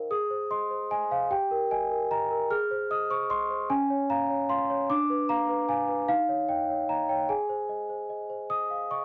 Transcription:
Already playing: A#4 C5 D#5 F5
0.11 G#4 D#6
0.30 C5
0.51 D#5 C6
0.71 C5
0.91 D#5 G#5
1.11 C5 F5
1.31 G4 G5
1.51 A#4
1.71 D#5 G#5
1.91 A#4
2.11 D#5 A#5
2.31 A#4
2.51 G#4 F6
2.71 C5
2.91 D#5 D#6
3.10 C5 C#6
3.30 D#5 C6
3.50 C5
3.70 C#4 G#5
3.90 C#5
4.10 F5 A#5
4.30 C#5
4.49 F5 C6
4.70 C#5
4.90 D4 D6
5.10 B4
5.29 F5 A#5
5.49 B4
5.69 F5 G#5
5.88 B4
6.09 D#4 F5
6.29 C#5
6.49 D#5 G5
6.69 C#5
6.89 D#5 A#5
7.09 C#5 G5
7.29 G#4 G#5
7.49 C5
7.69 D#5
7.89 C5
8.09 D#5
8.30 C5
8.50 D#5 D#6
8.70 F5
8.91 D#5 C#6

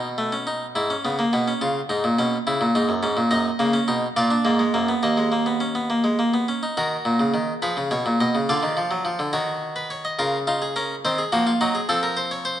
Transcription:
Already playing: B2
0.18 A3
0.32 C#4
0.47 D#4
0.75 G#2 E4
0.90 C#4
1.05 C#3 B3
1.19 A#3
1.33 B2 B3
1.48 C#4
1.61 C#3 F4
1.89 G#2 D#4
2.04 A#2
2.19 B2 C#4
2.47 C#3 E4
2.61 A#2
2.75 G#2 D#4
2.89 F#2
3.03 G#2 C#4
3.17 A#2
3.31 F#2 D#4 D#5
3.59 C#3 A#3
3.73 C#4
3.88 B2 D#4
4.16 A#2 F4 D5
4.31 D4
4.45 G#2 A#3
4.59 G#3
4.74 F#2 A#3
4.89 B3
5.03 D#2 A#3 D#5
5.17 G#3
5.32 A#3
5.46 B3
5.60 C#4
5.75 B3
5.90 A#3
6.04 G#3
6.19 A#3
6.34 B3
6.48 C#4
6.63 D#4
6.77 D#3 F#4 A#4
7.05 A#2
7.20 C#3
7.34 D#3
7.62 F3 G#4 B4
7.77 C#3
7.91 B2 C#5
8.06 A#2
8.21 B2 D#5
8.35 C#3
8.49 D3 F4 D5
8.63 D#3
8.77 F3
8.91 F#3
9.05 F3
9.19 D3
9.33 D#3 F#4 C#5
9.76 B4
9.90 C#5
10.05 D#5
10.19 C#3 F4 A#4
10.47 D#4 F4
10.62 G#4
10.76 C#4 A#4
11.05 D#3 C4 C5
11.18 G#4
11.32 F3 A#3 F#4
11.47 F4
11.61 F#3 D#4 F#4
11.75 G#4
11.89 F3 C4 A4
12.03 A#4
12.17 C5
12.31 C#5
12.45 C5

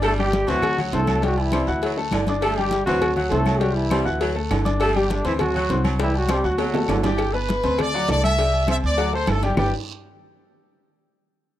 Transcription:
Already playing: G1 D4 D5 D6
0.02 G3 A4, cowbell, high conga, low agogo, long guiro, claves
0.06 A3
0.18 G3 G4 G5, high conga, low agogo
0.32 cowbell, high conga, low timbale, short guiro
0.47 D2 E3 F#3 C4 F#4 C5 C6, cowbell, high conga, low agogo, short guiro
0.62 cowbell, high conga, low conga, low agogo, long guiro, claves
0.78 F#3 F#4 F#5 F#6, high conga, low conga
0.92 C2 A3 C4 A4 C5 C6, cowbell, high conga, low timbale, low agogo, short guiro
1.07 F#3, high conga, low agogo, short guiro, claves
1.22 F#3 G3 F#4 G4 G5, cowbell, high conga, long guiro
1.37 E3 E4, high conga, low agogo
1.52 G3 C4 C5 C6, cowbell, high conga, low timbale, low agogo, short guiro, claves
1.67 D2 F#4 F#5 F#6, high conga, short guiro
1.82 F#3, cowbell, high conga, low agogo, long guiro
1.97 A3 A4 A5, high conga
2.11 G1 D3, cowbell, high conga, low timbale, low agogo, short guiro, claves
2.27 D4 D5 D6, cowbell, high conga, low agogo, short guiro
2.41 G3 A3 A4, cowbell, low agogo, long guiro, claves
2.57 G3 G4 G5, high conga, low agogo
2.71 cowbell, high conga, low timbale, short guiro
2.85 D2 E3 F#3 C4 F#4 C5 C6, cowbell, high conga, low agogo, short guiro
3.02 cowbell, high conga, low conga, low agogo, long guiro, claves
3.15 F#3 F#4 F#5 F#6, high conga, low conga
3.30 C2 A3 C4 A4 C5 C6, cowbell, low timbale, low agogo, short guiro
3.45 F#3, high conga, low agogo, short guiro, claves
3.60 F#3 G3 F#4 G4 G5, cowbell, long guiro
3.74 E3 E4, high conga, low agogo
3.90 G3 C4 C5 C6, cowbell, high conga, low timbale, low agogo, short guiro, claves
4.05 D2 F#4 F#5 F#6, high conga, short guiro
4.21 F#3, cowbell, high conga, low agogo, long guiro
4.35 A3 A4 A5, high conga
4.50 G1 D3, cowbell, high conga, low timbale, low agogo, short guiro, claves
4.65 D4 D5 D6, cowbell, high conga, low agogo, short guiro
4.80 G3 A3 A4, cowbell, high conga, low agogo, long guiro, claves
4.95 G3 G4 G5, high conga, low agogo
5.10 D3 D4, cowbell, high conga, low timbale, short guiro
5.24 D2 E3 C4 E4 C5 C6, cowbell, high conga, low agogo, short guiro
5.39 F#3 F#4, cowbell, high conga, low conga, low agogo, long guiro, claves
5.54 F#3 F#4 F#5 F#6, high conga, low conga
5.70 C2 C4 C5 C6, cowbell, high conga, low timbale, low agogo, short guiro
5.84 F#3, high conga, low agogo, short guiro, claves
6.00 E3 G3 E4 G4 G5, cowbell, high bongo, long guiro
6.14 F#3 F#4, high conga, low agogo
6.29 G3 C4 C5 C6, cowbell, high bongo, high conga, low timbale, low agogo, short guiro, claves
6.33 G3 G4
6.44 D2 F#3 F#4 F#5 F#6, high conga, short guiro
6.58 F#3, cowbell, high conga, high timbale, low agogo, long guiro
6.74 A3 A4 A5, low bongo, high conga, high timbale
6.88 G1 D3, cowbell, low bongo, high conga, low timbale, low agogo, short guiro, claves
7.03 D4 G4 D5 D6, cowbell, low bongo, high conga, low timbale, low agogo, short guiro
7.18 cowbell, high conga, low agogo, long guiro, claves
7.33 B3 B4 B5, high conga, low agogo
7.48 cowbell, high conga, low timbale, short guiro
7.64 D2 C4 C5 C6, cowbell, high conga, low agogo, short guiro
7.78 D5, cowbell, high conga, low conga, low agogo, long guiro, claves
7.94 F#3 F#4 F#5, high conga
8.08 C2 A3 A4 D5 A5, cowbell, high conga, low timbale, low agogo, short guiro
8.24 E5, high conga, low agogo, short guiro, claves
8.39 G3 G4 G5, cowbell, high conga, long guiro
8.54 high conga, low agogo
8.67 C4 C5 E5 C6, cowbell, high conga, low timbale, low agogo, short guiro, claves
8.83 D2 D5, high conga, short guiro
8.97 F#3 F#4 F#5, cowbell, high conga, low agogo, long guiro
9.13 A3 A4 C5 A5, high conga
9.27 G1 A4, cowbell, high conga, low timbale, low agogo, short guiro, claves
9.42 G3 G4 G5, cowbell, high conga, low agogo, short guiro
9.57 G1 G3 D4 G4 B4 D5 G5, low bongo, low conga, low timbale, long guiro, claves

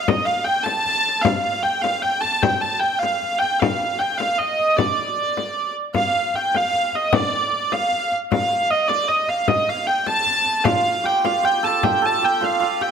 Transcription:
0.08 D#5, frame drum
0.25 F5, frame drum
0.45 G5, frame drum
0.64 A5, frame drum
0.86 frame drum
1.21 F5, frame drum
1.45 frame drum
1.63 G5, frame drum
1.82 F5, frame drum
2.02 G5, frame drum
2.21 A5, frame drum
2.42 G5, frame drum
2.61 A5, frame drum
2.80 G5
2.84 frame drum
2.99 F5, frame drum
3.23 frame drum
3.39 G5, frame drum
3.60 F5, frame drum
3.81 frame drum
3.99 G5, frame drum
4.18 F5, frame drum
4.39 D#5, frame drum
4.59 frame drum
4.77 D5, frame drum
4.99 frame drum
5.37 frame drum
5.94 F5, frame drum
6.15 frame drum
6.34 G5, frame drum
6.55 F5, frame drum
6.73 frame drum
6.93 D#5, frame drum
7.13 D5, frame drum
7.33 frame drum
7.52 frame drum
7.72 F5, frame drum
7.92 frame drum
8.12 frame drum
8.32 F5, frame drum
8.51 frame drum
8.71 D#5, frame drum
8.88 D5, frame drum
9.08 D#5, frame drum
9.28 F5, frame drum
9.48 D#5, frame drum
9.68 F5, frame drum
9.87 G5
10.07 A5, frame drum
10.26 frame drum
10.46 frame drum
10.64 F4 F5, frame drum
10.85 frame drum
11.04 G4 G5, frame drum
11.25 F4 F5, frame drum
11.43 G4 G5, frame drum
11.63 A4 A5, frame drum
11.83 G4 G5, frame drum
12.02 A4 A5, frame drum
12.22 G4 G5, frame drum
12.41 F4 F5, frame drum
12.60 F4 F5, frame drum
12.81 G4 G5, frame drum

